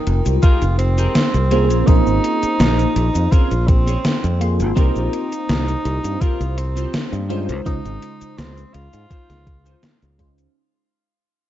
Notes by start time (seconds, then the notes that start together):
Already playing: G#3 D#4 F4 A#4 G5
0.06 F1, muted clean electric guitar stroke, closed hi-hat
0.25 C2, muted clean electric guitar stroke, closed hi-hat, cabasa
0.42 D#4 F4 G4 G#4 A#4, kick, closed hi-hat, cabasa
0.62 F1, closed hi-hat, cabasa
0.78 C4, muted clean electric guitar stroke, closed hi-hat
0.97 D#4 G4 G#4 A#4, closed hi-hat, cabasa
1.15 snare, closed hi-hat, cabasa
1.34 C2, muted clean electric guitar stroke, closed hi-hat, cabasa
1.51 A#3 C4 C#4 F4 G#4 A#4 C5, closed hi-hat
1.70 A#1, closed hi-hat, cabasa
1.86 A#1 A#3 D#4 F4 G#4 C5, kick, closed hi-hat, cabasa
2.07 G#1, cabasa
2.24 closed hi-hat
2.43 muted fingered electric bass stroke, closed hi-hat, cabasa
2.60 A#1, snare, closed hi-hat, cabasa
2.79 closed hi-hat, cabasa
2.96 A#1, muted clean electric guitar stroke, closed hi-hat
3.14 F2, muted clean electric guitar stroke, closed hi-hat, cabasa
3.31 C4 C#4 F4 G#4 A#4, kick, closed hi-hat, cabasa
3.51 A#1, closed hi-hat, cabasa
3.67 C4, muted clean electric guitar stroke, kick, closed hi-hat
3.86 C4 C#4 G#4 C#5, closed hi-hat, cabasa
4.05 snare, closed hi-hat, cabasa
4.23 F2, muted clean electric guitar stroke, closed hi-hat, cabasa
4.40 A#3 F4 G#4 C6, closed hi-hat
4.60 G#1, closed hi-hat, cabasa
4.75 C2 A#3 C4 D#4 F4 G4 A#4 C5, kick, closed hi-hat, cabasa
4.96 A#1, cabasa
5.13 closed hi-hat
5.32 closed hi-hat, cabasa
5.49 C2, snare, closed hi-hat, cabasa
5.68 closed hi-hat, cabasa
5.85 C2, closed hi-hat
6.03 G2, muted clean electric guitar stroke, closed hi-hat, cabasa
6.21 C4 F4 G4 A#4, muted fingered electric bass stroke, kick, closed hi-hat, cabasa
6.40 C2, closed hi-hat, cabasa
6.57 C4, muted clean electric guitar stroke, closed hi-hat
6.76 C4 F4 G4 C5, closed hi-hat, cabasa
6.94 snare, closed hi-hat, cabasa
7.12 G2, muted clean electric guitar stroke, closed hi-hat, cabasa
7.29 G#3 C#4 D#4 F4 C5, closed hi-hat
7.49 C#2, closed hi-hat, cabasa
7.64 C#2 C#3 G#3 D#4 F4 C5, kick, closed hi-hat, cabasa
7.85 G#1, closed hi-hat, cabasa
8.02 closed hi-hat
8.21 muted fingered electric bass stroke, closed hi-hat, cabasa
8.38 C#2 C4, snare, closed hi-hat, cabasa
8.58 closed hi-hat, cabasa
8.74 C#2 F4, closed hi-hat
8.92 G#2, muted clean electric guitar stroke, closed hi-hat, cabasa
9.09 C#4 D#4 F4 C5, kick, closed hi-hat, cabasa
9.30 C#2, snare, closed hi-hat, cabasa
9.47 kick, closed hi-hat
9.65 C#4 D#4 F4 C5, closed hi-hat, cabasa
9.83 snare, closed hi-hat, cabasa
10.01 C#2, muted clean electric guitar stroke, closed hi-hat, cabasa
10.18 G#3 C#4 D#4 F4 C5, kick, closed hi-hat
10.38 closed hi-hat, cabasa